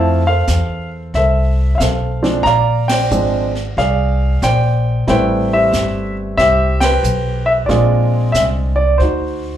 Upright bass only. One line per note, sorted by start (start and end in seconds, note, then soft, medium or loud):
0.00 0.46 F2 medium
0.48 1.12 E2 medium
1.14 1.77 C2 medium
1.80 2.43 B1 medium
2.45 3.09 A#1 medium
3.11 3.74 G#1 medium
3.77 4.40 C2 medium
4.42 5.05 A#1 medium
5.07 5.71 A1 medium
5.72 6.36 G1 medium
6.38 7.01 C2 medium
7.03 7.67 B1 medium
7.69 8.32 A#1 medium
8.35 8.98 C2 medium
9.00 9.57 D2 medium